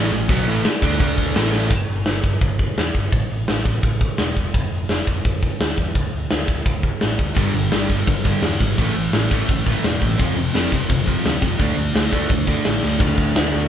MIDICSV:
0, 0, Header, 1, 9, 480
1, 0, Start_track
1, 0, Tempo, 352941
1, 404, Time_signature, 4, 2, 24, 8
1, 18605, End_track
2, 0, Start_track
2, 0, Title_t, "Distorted electric guitar"
2, 0, Program_c, 0, 30
2, 0, Note_on_c, 0, 45, 105
2, 158, Note_off_c, 0, 45, 0
2, 10731, Note_on_c, 0, 55, 62
2, 11926, Note_off_c, 0, 55, 0
2, 14584, Note_on_c, 0, 53, 77
2, 15768, Note_off_c, 0, 53, 0
2, 18605, End_track
3, 0, Start_track
3, 0, Title_t, "Overdriven electric guitar"
3, 0, Program_c, 1, 29
3, 0, Note_on_c, 1, 52, 117
3, 0, Note_on_c, 1, 57, 106
3, 142, Note_off_c, 1, 52, 0
3, 151, Note_on_c, 1, 45, 73
3, 158, Note_on_c, 1, 52, 76
3, 164, Note_off_c, 1, 57, 0
3, 350, Note_off_c, 1, 45, 0
3, 353, Note_off_c, 1, 52, 0
3, 374, Note_on_c, 1, 47, 104
3, 390, Note_on_c, 1, 59, 121
3, 392, Note_on_c, 1, 54, 100
3, 621, Note_off_c, 1, 47, 0
3, 626, Note_off_c, 1, 54, 0
3, 626, Note_on_c, 1, 45, 88
3, 630, Note_off_c, 1, 59, 0
3, 632, Note_on_c, 1, 52, 90
3, 636, Note_on_c, 1, 57, 102
3, 855, Note_off_c, 1, 45, 0
3, 872, Note_off_c, 1, 52, 0
3, 874, Note_off_c, 1, 57, 0
3, 1126, Note_on_c, 1, 50, 94
3, 1135, Note_on_c, 1, 57, 90
3, 1139, Note_on_c, 1, 62, 102
3, 1344, Note_off_c, 1, 50, 0
3, 1356, Note_off_c, 1, 57, 0
3, 1359, Note_off_c, 1, 62, 0
3, 1361, Note_on_c, 1, 50, 98
3, 1372, Note_on_c, 1, 57, 105
3, 1375, Note_on_c, 1, 62, 92
3, 1839, Note_off_c, 1, 50, 0
3, 1844, Note_off_c, 1, 57, 0
3, 1846, Note_off_c, 1, 62, 0
3, 1846, Note_on_c, 1, 45, 90
3, 1857, Note_on_c, 1, 52, 92
3, 1862, Note_on_c, 1, 57, 92
3, 2322, Note_off_c, 1, 45, 0
3, 2328, Note_off_c, 1, 52, 0
3, 2330, Note_off_c, 1, 57, 0
3, 10008, Note_on_c, 1, 43, 83
3, 10020, Note_on_c, 1, 55, 95
3, 10021, Note_on_c, 1, 50, 93
3, 10244, Note_off_c, 1, 43, 0
3, 10251, Note_off_c, 1, 50, 0
3, 10251, Note_off_c, 1, 55, 0
3, 10262, Note_on_c, 1, 43, 67
3, 10269, Note_on_c, 1, 50, 74
3, 10478, Note_off_c, 1, 43, 0
3, 10485, Note_off_c, 1, 50, 0
3, 10494, Note_on_c, 1, 43, 89
3, 10504, Note_on_c, 1, 50, 88
3, 10510, Note_on_c, 1, 55, 106
3, 10728, Note_off_c, 1, 43, 0
3, 10733, Note_off_c, 1, 50, 0
3, 10736, Note_off_c, 1, 55, 0
3, 10742, Note_on_c, 1, 43, 60
3, 10751, Note_on_c, 1, 50, 74
3, 10962, Note_off_c, 1, 43, 0
3, 10966, Note_off_c, 1, 50, 0
3, 10979, Note_on_c, 1, 43, 68
3, 10986, Note_on_c, 1, 50, 77
3, 11201, Note_off_c, 1, 43, 0
3, 11204, Note_off_c, 1, 50, 0
3, 11230, Note_on_c, 1, 55, 95
3, 11233, Note_on_c, 1, 43, 80
3, 11236, Note_on_c, 1, 50, 93
3, 11456, Note_off_c, 1, 55, 0
3, 11457, Note_off_c, 1, 43, 0
3, 11459, Note_off_c, 1, 50, 0
3, 11482, Note_on_c, 1, 43, 67
3, 11482, Note_on_c, 1, 50, 70
3, 11692, Note_off_c, 1, 43, 0
3, 11692, Note_off_c, 1, 50, 0
3, 11725, Note_on_c, 1, 43, 70
3, 11729, Note_on_c, 1, 50, 80
3, 11933, Note_off_c, 1, 43, 0
3, 11936, Note_off_c, 1, 50, 0
3, 11955, Note_on_c, 1, 45, 87
3, 11959, Note_on_c, 1, 52, 93
3, 11969, Note_on_c, 1, 57, 94
3, 12162, Note_off_c, 1, 45, 0
3, 12164, Note_off_c, 1, 52, 0
3, 12178, Note_on_c, 1, 45, 66
3, 12180, Note_on_c, 1, 52, 78
3, 12185, Note_off_c, 1, 57, 0
3, 12400, Note_off_c, 1, 45, 0
3, 12401, Note_off_c, 1, 52, 0
3, 12436, Note_on_c, 1, 45, 70
3, 12443, Note_on_c, 1, 52, 84
3, 12647, Note_off_c, 1, 52, 0
3, 12649, Note_off_c, 1, 45, 0
3, 12663, Note_on_c, 1, 52, 92
3, 12666, Note_on_c, 1, 45, 86
3, 12676, Note_on_c, 1, 57, 92
3, 12882, Note_off_c, 1, 45, 0
3, 12887, Note_off_c, 1, 52, 0
3, 12898, Note_off_c, 1, 57, 0
3, 12899, Note_on_c, 1, 45, 78
3, 12903, Note_on_c, 1, 52, 83
3, 13109, Note_off_c, 1, 45, 0
3, 13122, Note_off_c, 1, 52, 0
3, 13125, Note_on_c, 1, 45, 79
3, 13138, Note_on_c, 1, 57, 89
3, 13140, Note_on_c, 1, 52, 81
3, 13363, Note_off_c, 1, 45, 0
3, 13369, Note_off_c, 1, 57, 0
3, 13370, Note_off_c, 1, 52, 0
3, 13384, Note_on_c, 1, 45, 72
3, 13389, Note_on_c, 1, 52, 82
3, 13602, Note_off_c, 1, 45, 0
3, 13605, Note_off_c, 1, 52, 0
3, 13616, Note_on_c, 1, 45, 80
3, 13631, Note_on_c, 1, 52, 85
3, 13838, Note_off_c, 1, 45, 0
3, 13845, Note_off_c, 1, 52, 0
3, 13847, Note_on_c, 1, 41, 88
3, 13852, Note_on_c, 1, 53, 92
3, 13855, Note_on_c, 1, 48, 86
3, 14083, Note_off_c, 1, 41, 0
3, 14085, Note_off_c, 1, 53, 0
3, 14087, Note_off_c, 1, 48, 0
3, 14100, Note_on_c, 1, 41, 65
3, 14113, Note_on_c, 1, 48, 87
3, 14312, Note_off_c, 1, 48, 0
3, 14316, Note_off_c, 1, 41, 0
3, 14328, Note_on_c, 1, 48, 97
3, 14332, Note_on_c, 1, 53, 103
3, 14333, Note_on_c, 1, 41, 91
3, 14563, Note_off_c, 1, 48, 0
3, 14565, Note_off_c, 1, 41, 0
3, 14565, Note_off_c, 1, 53, 0
3, 14579, Note_on_c, 1, 41, 70
3, 14587, Note_on_c, 1, 48, 70
3, 14782, Note_off_c, 1, 41, 0
3, 14788, Note_off_c, 1, 48, 0
3, 14798, Note_on_c, 1, 41, 70
3, 14804, Note_on_c, 1, 48, 76
3, 15012, Note_off_c, 1, 41, 0
3, 15020, Note_off_c, 1, 48, 0
3, 15028, Note_on_c, 1, 41, 92
3, 15036, Note_on_c, 1, 48, 98
3, 15045, Note_on_c, 1, 53, 93
3, 15254, Note_off_c, 1, 48, 0
3, 15255, Note_off_c, 1, 41, 0
3, 15270, Note_on_c, 1, 48, 67
3, 15271, Note_on_c, 1, 41, 66
3, 15281, Note_off_c, 1, 53, 0
3, 15503, Note_off_c, 1, 48, 0
3, 15504, Note_off_c, 1, 41, 0
3, 15521, Note_on_c, 1, 48, 80
3, 15522, Note_on_c, 1, 41, 75
3, 15740, Note_off_c, 1, 48, 0
3, 15746, Note_on_c, 1, 50, 82
3, 15746, Note_on_c, 1, 57, 87
3, 15749, Note_off_c, 1, 41, 0
3, 15753, Note_on_c, 1, 62, 88
3, 15971, Note_off_c, 1, 50, 0
3, 15979, Note_off_c, 1, 57, 0
3, 15987, Note_on_c, 1, 50, 59
3, 15993, Note_off_c, 1, 62, 0
3, 15995, Note_on_c, 1, 57, 81
3, 16213, Note_off_c, 1, 50, 0
3, 16217, Note_off_c, 1, 57, 0
3, 16230, Note_on_c, 1, 50, 68
3, 16233, Note_on_c, 1, 57, 73
3, 16450, Note_off_c, 1, 50, 0
3, 16457, Note_off_c, 1, 57, 0
3, 16467, Note_on_c, 1, 50, 84
3, 16473, Note_on_c, 1, 57, 91
3, 16477, Note_on_c, 1, 62, 95
3, 16701, Note_off_c, 1, 50, 0
3, 16702, Note_off_c, 1, 57, 0
3, 16714, Note_off_c, 1, 62, 0
3, 16717, Note_on_c, 1, 50, 74
3, 16718, Note_on_c, 1, 57, 81
3, 16943, Note_off_c, 1, 50, 0
3, 16944, Note_off_c, 1, 57, 0
3, 16977, Note_on_c, 1, 50, 75
3, 16980, Note_on_c, 1, 57, 78
3, 16983, Note_on_c, 1, 62, 93
3, 17183, Note_off_c, 1, 57, 0
3, 17188, Note_off_c, 1, 50, 0
3, 17199, Note_on_c, 1, 57, 70
3, 17204, Note_on_c, 1, 50, 62
3, 17205, Note_off_c, 1, 62, 0
3, 17423, Note_off_c, 1, 57, 0
3, 17426, Note_off_c, 1, 50, 0
3, 17446, Note_on_c, 1, 50, 75
3, 17449, Note_on_c, 1, 57, 78
3, 17645, Note_off_c, 1, 50, 0
3, 17661, Note_on_c, 1, 50, 98
3, 17663, Note_off_c, 1, 57, 0
3, 17679, Note_on_c, 1, 57, 102
3, 17691, Note_on_c, 1, 62, 111
3, 18605, Note_off_c, 1, 50, 0
3, 18605, Note_off_c, 1, 57, 0
3, 18605, Note_off_c, 1, 62, 0
3, 18605, End_track
4, 0, Start_track
4, 0, Title_t, "Overdriven electric guitar"
4, 0, Program_c, 2, 29
4, 0, Note_on_c, 2, 45, 82
4, 156, Note_off_c, 2, 45, 0
4, 18605, End_track
5, 0, Start_track
5, 0, Title_t, "Picked electric bass"
5, 0, Program_c, 3, 34
5, 0, Note_on_c, 3, 33, 88
5, 151, Note_off_c, 3, 33, 0
5, 174, Note_on_c, 3, 33, 82
5, 390, Note_off_c, 3, 33, 0
5, 398, Note_on_c, 3, 35, 92
5, 625, Note_off_c, 3, 35, 0
5, 653, Note_on_c, 3, 33, 82
5, 873, Note_off_c, 3, 33, 0
5, 1125, Note_on_c, 3, 38, 100
5, 1350, Note_off_c, 3, 38, 0
5, 1363, Note_on_c, 3, 38, 101
5, 1813, Note_off_c, 3, 38, 0
5, 1864, Note_on_c, 3, 33, 92
5, 2305, Note_off_c, 3, 33, 0
5, 2322, Note_on_c, 3, 31, 88
5, 2470, Note_off_c, 3, 31, 0
5, 2584, Note_on_c, 3, 31, 76
5, 2727, Note_off_c, 3, 31, 0
5, 2813, Note_on_c, 3, 31, 79
5, 2959, Note_off_c, 3, 31, 0
5, 3046, Note_on_c, 3, 31, 80
5, 3195, Note_off_c, 3, 31, 0
5, 3284, Note_on_c, 3, 31, 84
5, 3580, Note_off_c, 3, 31, 0
5, 3781, Note_on_c, 3, 40, 80
5, 3926, Note_off_c, 3, 40, 0
5, 4017, Note_on_c, 3, 31, 76
5, 4163, Note_off_c, 3, 31, 0
5, 4252, Note_on_c, 3, 33, 80
5, 4401, Note_off_c, 3, 33, 0
5, 4516, Note_on_c, 3, 33, 74
5, 4657, Note_off_c, 3, 33, 0
5, 4764, Note_on_c, 3, 33, 80
5, 4903, Note_off_c, 3, 33, 0
5, 4969, Note_on_c, 3, 33, 79
5, 5119, Note_off_c, 3, 33, 0
5, 5212, Note_on_c, 3, 33, 91
5, 5507, Note_off_c, 3, 33, 0
5, 5706, Note_on_c, 3, 28, 75
5, 5852, Note_off_c, 3, 28, 0
5, 5939, Note_on_c, 3, 28, 89
5, 6087, Note_off_c, 3, 28, 0
5, 6176, Note_on_c, 3, 29, 91
5, 6325, Note_off_c, 3, 29, 0
5, 6428, Note_on_c, 3, 29, 85
5, 6573, Note_off_c, 3, 29, 0
5, 6657, Note_on_c, 3, 29, 81
5, 6806, Note_off_c, 3, 29, 0
5, 6903, Note_on_c, 3, 29, 80
5, 7050, Note_off_c, 3, 29, 0
5, 7136, Note_on_c, 3, 29, 89
5, 7431, Note_off_c, 3, 29, 0
5, 7630, Note_on_c, 3, 38, 81
5, 7775, Note_off_c, 3, 38, 0
5, 7858, Note_on_c, 3, 40, 75
5, 8007, Note_off_c, 3, 40, 0
5, 8098, Note_on_c, 3, 38, 79
5, 8247, Note_off_c, 3, 38, 0
5, 8356, Note_on_c, 3, 38, 77
5, 8499, Note_off_c, 3, 38, 0
5, 8603, Note_on_c, 3, 38, 82
5, 8745, Note_off_c, 3, 38, 0
5, 8824, Note_on_c, 3, 38, 89
5, 8971, Note_off_c, 3, 38, 0
5, 9055, Note_on_c, 3, 38, 82
5, 9351, Note_off_c, 3, 38, 0
5, 9567, Note_on_c, 3, 33, 81
5, 9708, Note_off_c, 3, 33, 0
5, 9773, Note_on_c, 3, 38, 77
5, 9924, Note_off_c, 3, 38, 0
5, 10018, Note_on_c, 3, 31, 79
5, 10167, Note_off_c, 3, 31, 0
5, 10258, Note_on_c, 3, 31, 81
5, 10407, Note_off_c, 3, 31, 0
5, 10503, Note_on_c, 3, 31, 85
5, 10651, Note_off_c, 3, 31, 0
5, 10744, Note_on_c, 3, 31, 84
5, 10891, Note_off_c, 3, 31, 0
5, 10978, Note_on_c, 3, 31, 88
5, 11272, Note_off_c, 3, 31, 0
5, 11455, Note_on_c, 3, 40, 85
5, 11605, Note_off_c, 3, 40, 0
5, 11703, Note_on_c, 3, 32, 92
5, 11850, Note_off_c, 3, 32, 0
5, 11938, Note_on_c, 3, 33, 94
5, 12087, Note_off_c, 3, 33, 0
5, 12191, Note_on_c, 3, 33, 75
5, 12336, Note_off_c, 3, 33, 0
5, 12444, Note_on_c, 3, 33, 89
5, 12585, Note_off_c, 3, 33, 0
5, 12670, Note_on_c, 3, 33, 82
5, 12815, Note_off_c, 3, 33, 0
5, 12912, Note_on_c, 3, 33, 80
5, 13202, Note_off_c, 3, 33, 0
5, 13389, Note_on_c, 3, 28, 84
5, 13534, Note_off_c, 3, 28, 0
5, 13633, Note_on_c, 3, 33, 77
5, 13777, Note_off_c, 3, 33, 0
5, 13861, Note_on_c, 3, 29, 93
5, 14008, Note_off_c, 3, 29, 0
5, 14098, Note_on_c, 3, 29, 80
5, 14246, Note_off_c, 3, 29, 0
5, 14352, Note_on_c, 3, 29, 90
5, 14495, Note_off_c, 3, 29, 0
5, 14581, Note_on_c, 3, 29, 90
5, 14728, Note_off_c, 3, 29, 0
5, 14819, Note_on_c, 3, 29, 90
5, 15111, Note_off_c, 3, 29, 0
5, 15313, Note_on_c, 3, 38, 90
5, 15455, Note_off_c, 3, 38, 0
5, 15537, Note_on_c, 3, 29, 88
5, 15684, Note_off_c, 3, 29, 0
5, 15774, Note_on_c, 3, 38, 86
5, 15922, Note_off_c, 3, 38, 0
5, 16013, Note_on_c, 3, 38, 81
5, 16161, Note_off_c, 3, 38, 0
5, 16254, Note_on_c, 3, 38, 91
5, 16401, Note_off_c, 3, 38, 0
5, 16490, Note_on_c, 3, 38, 83
5, 16638, Note_off_c, 3, 38, 0
5, 16735, Note_on_c, 3, 38, 85
5, 17026, Note_off_c, 3, 38, 0
5, 17231, Note_on_c, 3, 33, 79
5, 17371, Note_off_c, 3, 33, 0
5, 17467, Note_on_c, 3, 38, 76
5, 17608, Note_off_c, 3, 38, 0
5, 17684, Note_on_c, 3, 38, 100
5, 17866, Note_off_c, 3, 38, 0
5, 17924, Note_on_c, 3, 38, 82
5, 18105, Note_off_c, 3, 38, 0
5, 18186, Note_on_c, 3, 38, 95
5, 18358, Note_off_c, 3, 38, 0
5, 18426, Note_on_c, 3, 38, 93
5, 18598, Note_off_c, 3, 38, 0
5, 18605, End_track
6, 0, Start_track
6, 0, Title_t, "Muted distorted electric guitar strokes"
6, 893, Note_on_c, 9, 29, 59
6, 1029, Note_off_c, 9, 29, 0
6, 18605, End_track
7, 0, Start_track
7, 0, Title_t, "Muted overdriven electric guitar strokes"
7, 871, Note_on_c, 9, 29, 63
7, 1007, Note_off_c, 9, 29, 0
7, 18605, End_track
8, 0, Start_track
8, 0, Title_t, "Muted picked electric bass strokes"
8, 910, Note_on_c, 9, 29, 43
8, 1046, Note_off_c, 9, 29, 0
8, 18605, End_track
9, 0, Start_track
9, 0, Title_t, "Drums"
9, 396, Note_on_c, 9, 49, 63
9, 397, Note_on_c, 9, 36, 120
9, 532, Note_off_c, 9, 49, 0
9, 533, Note_off_c, 9, 36, 0
9, 880, Note_on_c, 9, 49, 73
9, 884, Note_on_c, 9, 38, 125
9, 1016, Note_off_c, 9, 49, 0
9, 1020, Note_off_c, 9, 38, 0
9, 1119, Note_on_c, 9, 36, 85
9, 1255, Note_off_c, 9, 36, 0
9, 1354, Note_on_c, 9, 49, 63
9, 1362, Note_on_c, 9, 36, 120
9, 1490, Note_off_c, 9, 49, 0
9, 1498, Note_off_c, 9, 36, 0
9, 1604, Note_on_c, 9, 36, 81
9, 1740, Note_off_c, 9, 36, 0
9, 1846, Note_on_c, 9, 49, 67
9, 1850, Note_on_c, 9, 38, 123
9, 1982, Note_off_c, 9, 49, 0
9, 1986, Note_off_c, 9, 38, 0
9, 2080, Note_on_c, 9, 38, 68
9, 2216, Note_off_c, 9, 38, 0
9, 2311, Note_on_c, 9, 46, 49
9, 2321, Note_on_c, 9, 36, 102
9, 2447, Note_off_c, 9, 46, 0
9, 2457, Note_off_c, 9, 36, 0
9, 2795, Note_on_c, 9, 46, 53
9, 2799, Note_on_c, 9, 38, 113
9, 2931, Note_off_c, 9, 46, 0
9, 2935, Note_off_c, 9, 38, 0
9, 3042, Note_on_c, 9, 36, 82
9, 3178, Note_off_c, 9, 36, 0
9, 3273, Note_on_c, 9, 46, 49
9, 3283, Note_on_c, 9, 36, 113
9, 3409, Note_off_c, 9, 46, 0
9, 3419, Note_off_c, 9, 36, 0
9, 3527, Note_on_c, 9, 36, 86
9, 3663, Note_off_c, 9, 36, 0
9, 3773, Note_on_c, 9, 46, 53
9, 3777, Note_on_c, 9, 38, 104
9, 3909, Note_off_c, 9, 46, 0
9, 3913, Note_off_c, 9, 38, 0
9, 4009, Note_on_c, 9, 36, 76
9, 4145, Note_off_c, 9, 36, 0
9, 4250, Note_on_c, 9, 36, 102
9, 4250, Note_on_c, 9, 46, 54
9, 4386, Note_off_c, 9, 36, 0
9, 4386, Note_off_c, 9, 46, 0
9, 4729, Note_on_c, 9, 46, 59
9, 4733, Note_on_c, 9, 38, 106
9, 4865, Note_off_c, 9, 46, 0
9, 4869, Note_off_c, 9, 38, 0
9, 4970, Note_on_c, 9, 36, 78
9, 5106, Note_off_c, 9, 36, 0
9, 5206, Note_on_c, 9, 46, 57
9, 5212, Note_on_c, 9, 36, 102
9, 5342, Note_off_c, 9, 46, 0
9, 5348, Note_off_c, 9, 36, 0
9, 5453, Note_on_c, 9, 36, 83
9, 5589, Note_off_c, 9, 36, 0
9, 5684, Note_on_c, 9, 46, 54
9, 5688, Note_on_c, 9, 38, 103
9, 5820, Note_off_c, 9, 46, 0
9, 5824, Note_off_c, 9, 38, 0
9, 5938, Note_on_c, 9, 36, 71
9, 6074, Note_off_c, 9, 36, 0
9, 6177, Note_on_c, 9, 46, 51
9, 6178, Note_on_c, 9, 36, 102
9, 6313, Note_off_c, 9, 46, 0
9, 6314, Note_off_c, 9, 36, 0
9, 6649, Note_on_c, 9, 46, 49
9, 6653, Note_on_c, 9, 38, 96
9, 6785, Note_off_c, 9, 46, 0
9, 6789, Note_off_c, 9, 38, 0
9, 6900, Note_on_c, 9, 36, 71
9, 7036, Note_off_c, 9, 36, 0
9, 7136, Note_on_c, 9, 46, 52
9, 7141, Note_on_c, 9, 36, 101
9, 7272, Note_off_c, 9, 46, 0
9, 7277, Note_off_c, 9, 36, 0
9, 7380, Note_on_c, 9, 36, 84
9, 7516, Note_off_c, 9, 36, 0
9, 7620, Note_on_c, 9, 46, 51
9, 7624, Note_on_c, 9, 38, 110
9, 7756, Note_off_c, 9, 46, 0
9, 7760, Note_off_c, 9, 38, 0
9, 7858, Note_on_c, 9, 36, 79
9, 7994, Note_off_c, 9, 36, 0
9, 8093, Note_on_c, 9, 46, 49
9, 8097, Note_on_c, 9, 36, 97
9, 8229, Note_off_c, 9, 46, 0
9, 8233, Note_off_c, 9, 36, 0
9, 8571, Note_on_c, 9, 46, 54
9, 8575, Note_on_c, 9, 38, 111
9, 8707, Note_off_c, 9, 46, 0
9, 8711, Note_off_c, 9, 38, 0
9, 8815, Note_on_c, 9, 36, 79
9, 8951, Note_off_c, 9, 36, 0
9, 9054, Note_on_c, 9, 46, 52
9, 9055, Note_on_c, 9, 36, 106
9, 9190, Note_off_c, 9, 46, 0
9, 9191, Note_off_c, 9, 36, 0
9, 9294, Note_on_c, 9, 36, 84
9, 9430, Note_off_c, 9, 36, 0
9, 9531, Note_on_c, 9, 46, 59
9, 9535, Note_on_c, 9, 38, 109
9, 9667, Note_off_c, 9, 46, 0
9, 9671, Note_off_c, 9, 38, 0
9, 9777, Note_on_c, 9, 36, 82
9, 9913, Note_off_c, 9, 36, 0
9, 10015, Note_on_c, 9, 46, 46
9, 10017, Note_on_c, 9, 36, 109
9, 10151, Note_off_c, 9, 46, 0
9, 10153, Note_off_c, 9, 36, 0
9, 10494, Note_on_c, 9, 46, 50
9, 10498, Note_on_c, 9, 38, 118
9, 10630, Note_off_c, 9, 46, 0
9, 10634, Note_off_c, 9, 38, 0
9, 10740, Note_on_c, 9, 36, 76
9, 10876, Note_off_c, 9, 36, 0
9, 10981, Note_on_c, 9, 36, 113
9, 10982, Note_on_c, 9, 46, 54
9, 11117, Note_off_c, 9, 36, 0
9, 11118, Note_off_c, 9, 46, 0
9, 11221, Note_on_c, 9, 36, 81
9, 11357, Note_off_c, 9, 36, 0
9, 11455, Note_on_c, 9, 46, 49
9, 11459, Note_on_c, 9, 38, 101
9, 11591, Note_off_c, 9, 46, 0
9, 11595, Note_off_c, 9, 38, 0
9, 11703, Note_on_c, 9, 36, 83
9, 11839, Note_off_c, 9, 36, 0
9, 11937, Note_on_c, 9, 46, 51
9, 11944, Note_on_c, 9, 36, 91
9, 12073, Note_off_c, 9, 46, 0
9, 12080, Note_off_c, 9, 36, 0
9, 12416, Note_on_c, 9, 46, 55
9, 12420, Note_on_c, 9, 38, 107
9, 12552, Note_off_c, 9, 46, 0
9, 12556, Note_off_c, 9, 38, 0
9, 12665, Note_on_c, 9, 36, 80
9, 12801, Note_off_c, 9, 36, 0
9, 12902, Note_on_c, 9, 46, 53
9, 12906, Note_on_c, 9, 36, 107
9, 13038, Note_off_c, 9, 46, 0
9, 13042, Note_off_c, 9, 36, 0
9, 13145, Note_on_c, 9, 36, 86
9, 13281, Note_off_c, 9, 36, 0
9, 13383, Note_on_c, 9, 46, 56
9, 13387, Note_on_c, 9, 38, 112
9, 13519, Note_off_c, 9, 46, 0
9, 13523, Note_off_c, 9, 38, 0
9, 13624, Note_on_c, 9, 36, 82
9, 13760, Note_off_c, 9, 36, 0
9, 13863, Note_on_c, 9, 46, 51
9, 13865, Note_on_c, 9, 36, 106
9, 13999, Note_off_c, 9, 46, 0
9, 14001, Note_off_c, 9, 36, 0
9, 14346, Note_on_c, 9, 46, 60
9, 14350, Note_on_c, 9, 38, 104
9, 14482, Note_off_c, 9, 46, 0
9, 14486, Note_off_c, 9, 38, 0
9, 14582, Note_on_c, 9, 36, 76
9, 14718, Note_off_c, 9, 36, 0
9, 14820, Note_on_c, 9, 46, 54
9, 14821, Note_on_c, 9, 36, 106
9, 14956, Note_off_c, 9, 46, 0
9, 14957, Note_off_c, 9, 36, 0
9, 15061, Note_on_c, 9, 36, 73
9, 15197, Note_off_c, 9, 36, 0
9, 15304, Note_on_c, 9, 46, 59
9, 15308, Note_on_c, 9, 38, 111
9, 15440, Note_off_c, 9, 46, 0
9, 15444, Note_off_c, 9, 38, 0
9, 15534, Note_on_c, 9, 36, 75
9, 15670, Note_off_c, 9, 36, 0
9, 15772, Note_on_c, 9, 36, 104
9, 15776, Note_on_c, 9, 46, 47
9, 15908, Note_off_c, 9, 36, 0
9, 15912, Note_off_c, 9, 46, 0
9, 16255, Note_on_c, 9, 46, 57
9, 16259, Note_on_c, 9, 38, 113
9, 16391, Note_off_c, 9, 46, 0
9, 16395, Note_off_c, 9, 38, 0
9, 16491, Note_on_c, 9, 36, 77
9, 16627, Note_off_c, 9, 36, 0
9, 16728, Note_on_c, 9, 36, 110
9, 16737, Note_on_c, 9, 46, 58
9, 16864, Note_off_c, 9, 36, 0
9, 16873, Note_off_c, 9, 46, 0
9, 16964, Note_on_c, 9, 36, 82
9, 17100, Note_off_c, 9, 36, 0
9, 17201, Note_on_c, 9, 46, 55
9, 17205, Note_on_c, 9, 38, 99
9, 17337, Note_off_c, 9, 46, 0
9, 17341, Note_off_c, 9, 38, 0
9, 17443, Note_on_c, 9, 38, 60
9, 17579, Note_off_c, 9, 38, 0
9, 17682, Note_on_c, 9, 36, 115
9, 17682, Note_on_c, 9, 57, 127
9, 17818, Note_off_c, 9, 36, 0
9, 17818, Note_off_c, 9, 57, 0
9, 17923, Note_on_c, 9, 36, 90
9, 18059, Note_off_c, 9, 36, 0
9, 18168, Note_on_c, 9, 46, 69
9, 18172, Note_on_c, 9, 38, 127
9, 18304, Note_off_c, 9, 46, 0
9, 18308, Note_off_c, 9, 38, 0
9, 18605, End_track
0, 0, End_of_file